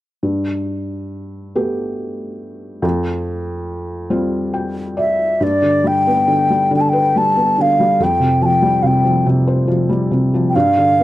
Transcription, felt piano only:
0.23 G2
1.55 A3 B3 G4
2.82 F2
4.10 G3 C4 F4
4.54 G5
4.97 D5
5.41 G2
5.62 D3
5.84 G3
6.07 B3
6.28 D3
6.50 G3
6.71 D3
6.93 B4
7.16 G3
7.36 B3
7.58 D3
7.80 G3
8.00 F2
8.20 C3
8.41 F3
8.62 G3
8.83 C3
9.05 F3
9.26 C3
9.47 C5
9.68 F3
9.89 G3
10.11 C3
10.34 F3
10.56 G2
10.77 D3
11.00 B3

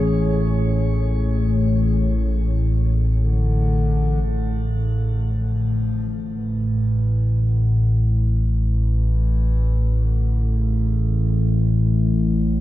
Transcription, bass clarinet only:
3.21 D3
4.26 C#3
5.31 F3
6.37 E3
7.41 D3
8.46 E3
10.04 D3
10.57 C#3

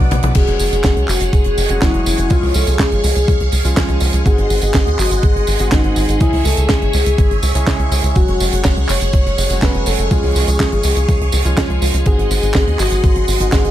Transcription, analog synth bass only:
0.11 B1
0.23 B1
0.35 F#1
0.48 F#1
0.60 F#1
0.72 F#1
0.84 F#1
0.96 C#2
1.08 F#1
1.21 F#1
1.33 F#1
1.45 F#1
1.57 F#1
1.70 F#1
1.82 F#1
1.94 F#1
2.06 F#1
2.19 F#1
2.31 C#2
2.43 C#2
2.55 C#2
2.67 C#2
2.79 C#2
2.92 G#1
3.04 C#2
3.16 C#2
3.28 C#2
3.40 C#2
3.53 C#2
3.65 C#2
3.77 C#2
3.89 C#2
4.01 C#2
4.13 C#2
4.26 G#1
4.38 G#1
4.50 G#1
4.62 G#1
4.74 G#1
4.87 D#2
4.99 G#1
5.11 G#1
5.23 G#1
5.35 G#1
5.48 G#1
5.60 G#1
5.72 G#1
5.84 G#1
5.97 G#1
6.09 G#1
6.21 C#2
6.33 C#2
6.45 C#2
6.58 C#2
6.70 C#2
6.82 G#1
6.94 C#2
7.06 C#2
7.18 G#1
7.31 G#1
7.43 C#2
7.55 C#2
7.67 C#2
7.79 C#2
7.92 C#2
8.04 C#2
8.16 F#1
8.28 F#1
8.40 F#1
8.53 F#1
8.65 F#1
8.77 C#2
8.89 F#1
9.01 F#1
9.14 F#1
9.26 F#1
9.38 F#1
9.50 F#1
9.62 F#1
9.74 F#1
9.87 F#1
9.99 F#1
10.11 C#2
10.23 C#2
10.35 C#2
10.48 C#2
10.60 C#2
10.72 G#1
10.84 C#2
10.96 C#2
11.09 C#2
11.21 C#2
11.33 C#2
11.45 C#2
11.57 C#2
11.70 C#2
11.82 C#2
11.94 C#2
12.06 G#1
12.18 G#1
12.31 G#1
12.43 G#1
12.55 G#1
12.67 D#2
12.79 G#1
12.91 G#1
13.04 G#1
13.16 G#1
13.28 G#1
13.40 G#1
13.53 G#1
13.65 G#1

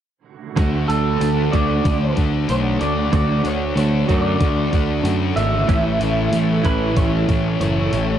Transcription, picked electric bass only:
0.57 D2
0.89 D2
1.21 D2
1.54 D2
1.86 D2
2.17 D2
2.49 B1
2.81 D2
3.13 D2
3.44 D2
3.76 D2
4.09 F#2
4.40 D2
4.73 D2
5.04 F#2
5.36 G#1
5.69 A1
6.00 A1
6.32 A1
6.65 A1
6.97 A1
7.29 A1
7.61 F#1
7.93 A1

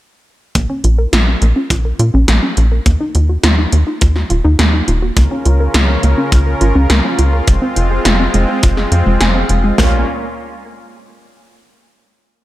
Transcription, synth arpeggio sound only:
0.55 A#3
0.70 C#4
0.84 F4
0.98 A#4
1.13 F4
1.27 C#4
1.42 A#3
1.56 C#4
1.70 F4
1.85 A#4
1.99 F4
2.14 C#4
2.28 A#3
2.43 C#4
2.57 F4
2.72 A#4
2.86 A#3
3.00 D#4
3.15 F4
3.29 F#4
3.44 F4
3.58 D#4
3.73 A#3
3.87 D#4
4.01 F4
4.16 F#4
4.30 F4
4.44 D#4
4.59 A#3
4.74 D#4
4.88 F4
5.02 F#4
5.17 A#3
5.31 C#4
5.46 F4
5.60 A#4
5.75 F4
5.89 C#4
6.03 A#3
6.18 C#4
6.32 F4
6.46 A#4
6.61 F4
6.75 C#4
6.90 A#3
7.04 C#4
7.19 F4
7.33 A#4
7.48 G#3
7.62 C4
7.76 F4
7.91 G#4
8.05 F4
8.20 C4
8.34 G#3
8.48 C4
8.63 F4
8.77 G#4
8.92 F5
9.06 G#3
9.21 G#5
9.35 C4
9.50 G#3
9.64 G#3
9.78 A#3

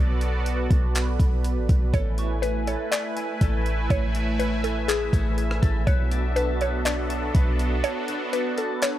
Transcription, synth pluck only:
1.94 C#5
2.42 B4
2.68 C#5
2.92 D5
3.91 C#5
4.39 B4
4.64 A4
4.88 G#4
5.87 C#5
6.36 B4
6.61 C#5
6.85 D5
7.84 C#5
8.33 B4
8.58 A4
8.82 C#5

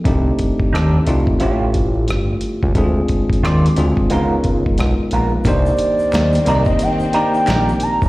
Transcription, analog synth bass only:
0.06 C2
0.74 D#2
1.07 C2
1.41 A1
2.08 G1
2.63 C#2
2.76 D2
3.43 D#2
3.77 D2
4.11 C#2
4.79 B1
5.12 A#1
5.45 C2
6.13 D#2
6.47 C2
7.48 A#1
8.02 D#1

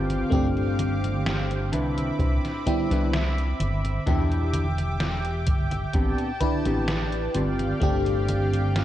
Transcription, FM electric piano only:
0.30 A3 C4 D4 G4
2.66 G3 B3 D4 E4
2.91 G3 B3 D4 E4
4.06 B3 D4 E4 G4
6.40 D4 E4 B4
7.80 A3 C4 D4 G4

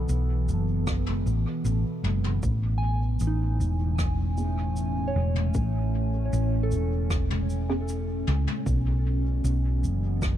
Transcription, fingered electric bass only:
0.09 B1
0.48 F#1
1.26 A1
1.65 A1
2.03 F#1
2.43 A1
3.21 A1
3.60 E1
5.16 E1
5.55 A1
6.33 A1
6.72 E1
8.28 C#2
8.66 B1
9.44 B1
9.83 F#1

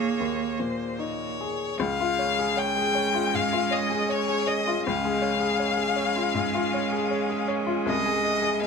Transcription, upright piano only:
Already playing: D#2 A#2 D#4 G#4
0.20 D#2
0.59 A#2
0.99 D#4
1.41 G#4
1.80 C#2
2.00 F4
2.19 C#5
2.39 G#4
2.57 C#5
2.77 G#4
2.95 C#5
3.14 F4
3.34 G#2
3.53 F4
3.71 C#5
3.90 G#4
4.09 C#5
4.28 G#4
4.47 C#5
4.67 F4
4.87 C#2
5.05 G#3
5.22 C#5
5.40 G#4
5.59 C#5
5.77 G#4
5.96 C#5
6.16 F4
6.34 G#2
6.55 F4
6.74 C#5
6.93 G#4
7.11 C#5
7.30 G#4
7.48 C#5
7.67 F4
7.86 C2
8.06 G#4
8.23 D#5
8.42 G#4
8.61 D#5

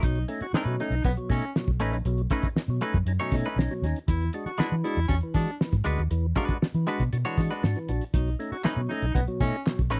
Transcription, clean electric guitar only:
0.55 A3 C#4 D#4 B4
1.80 A3 C#4 D#4 B4
2.31 A3 C#4 D#4 B4
2.81 A3 C#4 D#4 B4
3.20 A3 C#4 D#4 C#5
3.46 A3 C#4 D#4 B4
4.58 G#3 D4 F#4 B4
5.85 G#3 D4 F#4 B4
6.36 G#3 D4 F#4 B4
6.87 G#3 D4 F#4 B4
7.25 G#3 D4 F#4 C#5
7.51 G#3 D4 F#4 B4
8.64 A3 C#4 D#4 B4
9.90 A3 C#4 D#4 B4

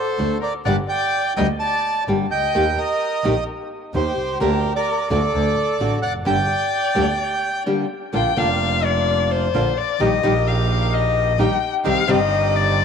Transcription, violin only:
Already playing: A4
0.41 A#4
0.65 D5
0.90 D5
1.37 D#5
1.60 D5
2.32 D#5
2.78 A#4
3.96 G4
4.42 G4
4.76 A#4
5.11 A4
6.03 D5
6.26 D5
8.14 G5
8.38 F5
8.85 D5
9.31 C5
9.78 D5
10.01 D#5
10.48 F5
10.93 D#5
11.40 G5
11.86 F5
12.10 D#5
12.56 D5

